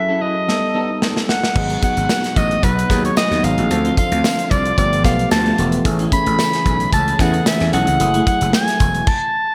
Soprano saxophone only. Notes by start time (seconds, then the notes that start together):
Already playing: E5
0.21 D#5
1.29 F#5
1.84 F#5
2.37 D#5
2.64 B4
3.06 C#5
3.17 D#5
3.44 F5
3.98 F5
4.51 D5
4.78 D5
5.05 F5
5.32 A5
6.13 B5
6.94 A5
7.21 F#5
7.47 E5
7.73 F#5
8.27 F#5
8.55 G#5
9.07 A5